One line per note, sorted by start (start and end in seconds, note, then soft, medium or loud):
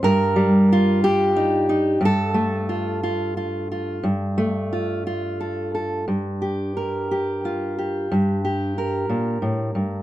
0.03 1.99 G2 medium
0.03 1.03 A#4 loud
0.36 1.98 G3 medium
0.73 1.70 F4 medium
1.04 2.02 G4 loud
1.36 1.68 D#4 medium
1.69 1.98 D#4 soft
2.01 4.02 G2 medium
2.05 5.39 A4 loud
2.34 3.99 A3 medium
2.69 3.03 F4 soft
3.03 3.37 F4 medium
3.37 3.71 F4 soft
3.72 4.07 F4 soft
4.04 6.06 G2 medium
4.38 6.04 A3 medium
4.73 5.05 F4 soft
5.07 6.04 F4 soft
5.40 5.73 A4 soft
5.75 6.04 A4 soft
6.08 8.10 G2 medium
6.42 7.11 G4 soft
6.77 8.06 A#4 medium
7.11 7.78 G4 medium
7.45 8.15 F4 medium
7.78 8.44 G4 soft
8.12 9.09 G2 medium
8.45 10.03 G4 medium
8.78 10.03 A#4 medium
9.09 9.42 A#2 medium
9.42 9.75 A2 medium
9.75 10.03 G2 medium